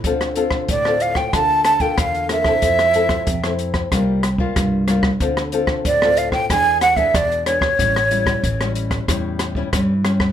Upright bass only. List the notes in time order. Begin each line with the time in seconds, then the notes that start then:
0.04 D2
0.69 D2
1.33 D2
1.98 E2
2.62 F2
3.27 F2
3.92 C2
4.56 C2
5.20 D2
5.85 D2
6.50 E2
7.14 E2
7.79 A1
8.44 A1
9.08 E2
9.73 G2